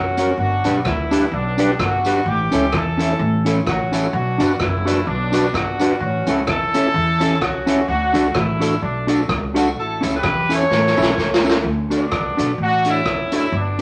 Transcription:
Already playing: F#1 C#4 F#4
0.17 C#4 F#4 A#4 C#5, closed hi-hat, tambourine
0.38 G1 D4 F#4
0.64 B1 D4 G4 B4 D5, closed hi-hat, tambourine
0.85 D2 B3 E4 G4 B4, kick, cross-stick
1.11 D4 G4 B4 D5, closed hi-hat, tambourine
1.32 B1 B3 D4
1.58 D4 G4 B4 D5, closed hi-hat, tambourine
1.79 G1 D4 F#4, muted clean electric guitar stroke, kick, cross-stick
2.05 D4 G4 B4 D5, closed hi-hat, tambourine
2.26 A1 E4 G4
2.51 C#2 C#4 E4 A4 C#5, closed hi-hat, tambourine
2.72 E2 E4 A4, kick, cross-stick
2.77 A4
2.97 C#4 E4 A4 C#5, closed hi-hat, tambourine
3.19 A1
3.45 C#4 E4 A4 C#5, closed hi-hat, tambourine
3.65 A1 C#4 F#4, muted clean electric guitar stroke, kick, cross-stick
3.92 C#4 E4 A4 C#5, closed hi-hat, tambourine
4.13 B1 D4 F#4
4.38 G1 D4 F#4 B4 D5, closed hi-hat, tambourine
4.60 F#1 B3 E4 F#4 B4, kick, cross-stick
4.85 D4 F#4 B4 D5, closed hi-hat, tambourine
5.06 B1 B3 D4
5.32 D4 F#4 B4 D5, closed hi-hat, tambourine
5.53 G1 D4 F#4, muted clean electric guitar stroke, kick, cross-stick
5.79 D4 F#4 B4 D5, closed hi-hat, tambourine
6.00 A1 C#4 F#4
6.27 C#2 C#4 E4 A4 C#5, closed hi-hat, tambourine
6.47 E2 E4 A4, kick, cross-stick
6.74 C#4 E4 A4 C#5, closed hi-hat, tambourine
6.94 E2
7.20 C#4 E4 A4 C#5, closed hi-hat, tambourine
7.41 C#2 C#4 F#4, muted clean electric guitar stroke, kick, cross-stick
7.66 C#4 E4 A4 C#5, closed hi-hat, tambourine
7.88 D2 D4 F#4
8.13 C#2 D4 F#4 A4 D5, closed hi-hat, tambourine
8.34 A1 A3 E4 F#4 A4, kick, cross-stick
8.60 D4 F#4 A4 D5, closed hi-hat, tambourine
8.82 B1 A3 D4
9.07 D4 F#4 A4 D5, closed hi-hat, tambourine
9.28 C#2, muted clean electric guitar stroke, kick, cross-stick
9.54 D4 F#4 A4 D5, closed hi-hat, tambourine
9.58 D4 F#4
9.76 A1 E4 A4
10.01 C#2 C#4 E4 A4 C#5, closed hi-hat, tambourine
10.16 G4 B4
10.23 E2 E4 A4, kick, cross-stick
10.49 C#4 E4 A4 C#5, closed hi-hat, tambourine
10.54 C#5
10.70 A1, snare
10.87 snare
10.96 B1 C#4 E4 A4 C#5, tambourine
11.02 snare
11.18 C#2, kick, snare
11.34 snare
11.44 C#4 E4 A4 C#5, tambourine
11.49 snare
11.64 D2
11.90 D4 F#4 A4 D5, closed hi-hat, tambourine
11.94 B3 D4
12.12 C#2, kick, cross-stick
12.37 B1 D4 F#4 A4 D5, closed hi-hat, tambourine
12.58 A1 D4
12.62 F#4
12.85 C#4 D4 F#4 A4 D5, closed hi-hat, tambourine
12.90 E4
13.05 F#1, muted clean electric guitar stroke, kick, cross-stick
13.32 C#4 D4 F#4 A4 D5, closed hi-hat, tambourine
13.36 E4
13.52 G1 B3
13.57 D4

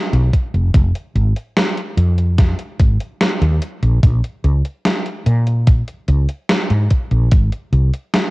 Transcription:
0.13 B1, closed hi-hat
0.33 kick, closed hi-hat
0.54 F1, closed hi-hat
0.74 F1, kick, closed hi-hat
0.95 closed hi-hat
1.15 G#1, closed hi-hat
1.36 closed hi-hat
1.57 snare, closed hi-hat
1.78 closed hi-hat
1.97 F2, closed hi-hat
2.18 closed hi-hat
2.38 kick, snare, closed hi-hat
2.59 closed hi-hat
2.80 G#1, kick, closed hi-hat
3.00 closed hi-hat
3.21 snare, closed hi-hat
3.41 D#2, closed hi-hat
3.62 closed hi-hat
3.82 A#1, closed hi-hat
4.03 A#1, kick, closed hi-hat
4.24 closed hi-hat
4.44 C#2, closed hi-hat
4.65 closed hi-hat
4.85 snare, closed hi-hat
5.06 closed hi-hat
5.26 A#2, closed hi-hat
5.47 closed hi-hat
5.67 kick, closed hi-hat
5.88 closed hi-hat
6.08 C#2, closed hi-hat
6.29 closed hi-hat
6.49 snare, closed hi-hat
6.70 G#2, closed hi-hat
6.90 kick, closed hi-hat
7.11 A#1, closed hi-hat
7.31 G#1, kick, closed hi-hat
7.52 closed hi-hat
7.72 C2, closed hi-hat
7.93 closed hi-hat
8.14 snare, closed hi-hat

